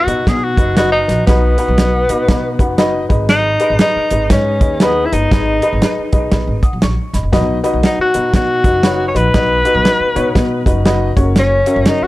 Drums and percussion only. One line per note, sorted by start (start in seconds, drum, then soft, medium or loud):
0.08 closed hi-hat medium
0.27 kick medium
0.27 snare loud
0.27 closed hi-hat loud
0.57 kick medium
0.57 closed hi-hat medium
0.77 snare medium
0.77 closed hi-hat medium
1.09 snare soft
1.09 closed hi-hat medium
1.27 kick loud
1.27 snare medium
1.27 closed hi-hat medium
1.58 closed hi-hat medium
1.78 snare loud
1.78 closed hi-hat medium
2.09 closed hi-hat medium
2.29 kick medium
2.29 snare loud
2.29 closed hi-hat medium
2.59 kick medium
2.59 closed hi-hat medium
2.78 snare loud
2.78 closed hi-hat medium
3.10 kick medium
3.10 closed hi-hat medium
3.29 snare loud
3.29 closed hi-hat medium
3.60 closed hi-hat medium
3.79 snare loud
3.79 closed hi-hat medium
4.11 closed hi-hat medium
4.30 kick medium
4.30 snare loud
4.30 closed hi-hat medium
4.61 kick medium
4.61 closed hi-hat medium
4.80 snare loud
4.80 closed hi-hat medium
5.13 closed hi-hat medium
5.32 kick loud
5.32 snare loud
5.32 closed hi-hat medium
5.62 closed hi-hat medium
5.82 snare loud
5.82 closed hi-hat medium
6.13 kick medium
6.13 closed hi-hat medium
6.32 kick medium
6.32 snare loud
6.32 closed hi-hat medium
6.63 kick medium
6.63 closed hi-hat medium
6.82 snare loud
6.82 closed hi-hat medium
7.14 snare soft
7.14 closed hi-hat medium
7.33 kick medium
7.33 snare loud
7.33 closed hi-hat medium
7.64 closed hi-hat medium
7.83 snare loud
7.83 closed hi-hat medium
8.14 closed hi-hat medium
8.34 kick medium
8.34 snare loud
8.34 closed hi-hat medium
8.64 kick medium
8.64 closed hi-hat medium
8.83 snare loud
8.83 closed hi-hat medium
9.16 closed hi-hat medium
9.34 kick medium
9.34 snare loud
9.34 closed hi-hat medium
9.65 closed hi-hat medium
9.85 snare loud
9.85 closed hi-hat medium
10.16 closed hi-hat medium
10.35 kick medium
10.35 snare loud
10.35 closed hi-hat medium
10.66 kick medium
10.66 closed hi-hat medium
10.86 snare loud
10.86 closed hi-hat medium
11.17 kick loud
11.17 closed hi-hat medium
11.36 snare medium
11.36 closed hi-hat medium
11.66 closed hi-hat medium
11.86 snare loud
11.86 closed hi-hat medium